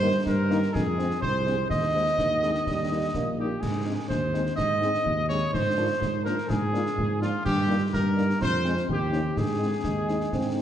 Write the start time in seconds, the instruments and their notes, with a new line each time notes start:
Already playing: tuba G2, trumpet section C5
0.02 french horn section D#3 A#3 D#4
0.26 tuba G2, trumpet section A#4, concert bass drum, snare
0.50 french horn section D#3 A#3 D#4, snare
0.63 snare
0.73 tuba F2, trumpet section G#4, concert bass drum, snare
0.98 french horn section G#3 C4, snare
1.11 snare
1.21 tuba C2, trumpet section C5, concert bass drum
1.47 french horn section G#3 C4, snare
1.70 tuba D#2, trumpet section D#5, concert bass drum, snare
1.94 french horn section G#3 C4 D#4
2.18 tuba D#2, euphonium D#3, concert bass drum, snare
2.42 french horn section G#3 C4 D#4, snare
2.55 snare
2.66 tuba D#2, euphonium G3, concert bass drum, snare
2.90 french horn section G3 A#3 D#4
3.14 tuba A#1, euphonium A#3, concert bass drum, snare
3.38 french horn section G3 A#3 D#4, trumpet section G4
3.60 tuba G#2, trumpet section G#4, concert bass drum, snare, crash
3.86 french horn section G#3 C4 D#4
4.08 tuba D#2, trumpet section C5, concert bass drum, snare
4.33 french horn section G#3 C4 D#4, snare
4.46 snare
4.56 tuba G#2, trumpet section D#5, concert bass drum, snare
4.81 french horn section G#3 C4 D#4, snare
4.95 snare
5.04 tuba D#2, concert bass drum
5.29 french horn section G#3 C4 D#4, trumpet section C#5, snare
5.52 tuba G#2, trumpet section C5, concert bass drum, snare
5.77 french horn section F3 A#3 D4
6.00 tuba G#2, concert bass drum, snare
6.24 french horn section F3 A#3 D4, trumpet section A#4, snare
6.38 snare
6.48 tuba G#2, trumpet section G#4, concert bass drum, snare
6.72 french horn section F3 A#3 D4, snare
6.86 snare
6.97 tuba G#2, concert bass drum
7.21 french horn section F3 A#3 D4, trumpet section F4, snare
7.45 tuba G2, trumpet section G4, concert bass drum, snare, crash
7.67 french horn section G3 A#3 D#4
7.93 tuba G2, trumpet section A#4, concert bass drum, snare
8.15 french horn section G3 A#3 D#4, snare
8.30 snare
8.41 tuba F2, trumpet section C5, concert bass drum, snare
8.64 french horn section G#3 C4, snare
8.77 snare
8.89 tuba D#2, trumpet section G4, concert bass drum
9.11 french horn section A#3 C#4 D#4, snare
9.36 tuba G#2, trumpet section G#4, concert bass drum, snare
9.59 french horn section G#3 C4 D#4
9.84 tuba D#2, euphonium G#3, concert bass drum, snare
10.08 french horn section G#3 C4 D#4, snare
10.21 snare
10.32 tuba G#2, euphonium C4, concert bass drum, snare
10.55 french horn section G#3 C4 D#4